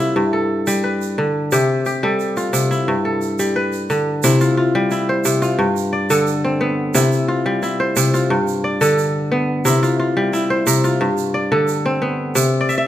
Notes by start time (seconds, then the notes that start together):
Already playing: C3 G3 D4 F4 G4 A4
0.00 E4
0.16 G2
0.33 A4
0.67 G3, shaker
0.84 B4
1.01 shaker
1.18 D3
1.52 C3 G4, shaker
1.86 G4, shaker
2.03 G3 A4
2.20 shaker
2.37 F4, shaker
2.53 C3, shaker
2.71 E4, shaker
2.88 G2
3.05 A4
3.22 shaker
3.39 G3, shaker
3.56 B4
3.73 shaker
3.90 D3, shaker
4.23 C3 E4, shaker
4.40 F4, shaker
4.57 F4
4.75 G3
4.91 E4, shaker
5.09 C5
5.25 C3, shaker
5.42 F4, shaker
5.59 G2
5.76 shaker
5.93 D5
6.10 D3 A4, shaker
6.27 shaker
6.44 C4
6.61 B3
6.95 C3 E4, shaker
7.12 shaker
7.28 F4
7.46 G3
7.63 E4, shaker
7.80 C5
7.96 C3, shaker
8.14 F4, shaker
8.30 G2
8.48 shaker
8.64 D5
8.81 D3 A4, shaker
8.98 shaker
9.32 B3
9.65 C3 E4, shaker
9.83 F4, shaker
10.00 F4
10.17 G3
10.33 E4, shaker
10.50 C5
10.67 C3, shaker
10.84 F4, shaker
11.01 G2
11.18 shaker
11.34 D5
11.52 D3 A4
11.68 shaker
11.86 C4
12.02 B3
12.35 C3, shaker
12.61 D5
12.69 E5, shaker
12.78 E5